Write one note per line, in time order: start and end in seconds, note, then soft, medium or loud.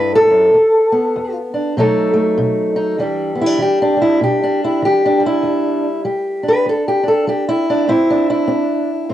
0.00 0.30 G2 medium
0.00 0.52 C4 medium
0.00 0.52 E4 soft
0.00 0.14 B4 loud
0.15 1.37 A4 loud
0.30 0.54 F#2 medium
0.54 1.11 E2 medium
0.92 1.74 B3 medium
1.16 1.72 E2 medium
1.54 1.74 D4 soft
1.77 2.33 B2 medium
1.77 2.97 F#3 medium
1.77 2.12 A3 medium
1.77 2.75 D#4 medium
1.77 2.98 A4 medium
2.14 2.96 A3 medium
2.38 2.94 B2 medium
2.76 2.97 D#4 medium
2.98 3.55 E2 medium
2.98 3.58 E3 soft
2.98 3.96 G3 medium
2.98 3.35 D4 soft
2.98 3.41 G4 medium
3.35 3.46 B3 soft
3.41 3.61 E4 medium
3.46 3.80 D4 soft
3.58 4.16 E3 medium
3.62 4.01 G4 medium
3.82 4.42 D4 medium
3.97 5.20 G3 soft
4.01 4.22 E4 medium
4.21 4.77 B2 medium
4.21 4.63 G4 medium
4.43 5.04 D4 medium
4.64 4.84 E4 medium
4.82 5.39 E3 medium
4.82 5.25 G4 medium
5.06 5.86 D4 medium
5.20 6.05 G3 soft
5.26 6.05 E4 loud
5.43 5.99 E2 medium
6.05 6.61 G3 medium
6.05 6.48 G4 soft
6.43 7.02 D4 soft
6.48 6.67 B4 loud
6.65 7.22 E2 medium
6.65 6.88 A4 medium
6.88 7.07 G4 medium
7.03 7.67 D4 soft
7.08 7.27 A4 medium
7.27 7.83 G3 medium
7.27 7.48 G4 medium
7.49 7.88 E4 medium
7.70 7.89 D4 medium
7.88 8.44 A2 medium
7.88 8.46 C4 medium
7.88 8.29 E4 medium
8.10 8.90 D4 medium
8.30 9.14 E4 medium
8.48 9.04 C4 medium
9.09 9.14 A2 medium
9.09 9.14 C4 medium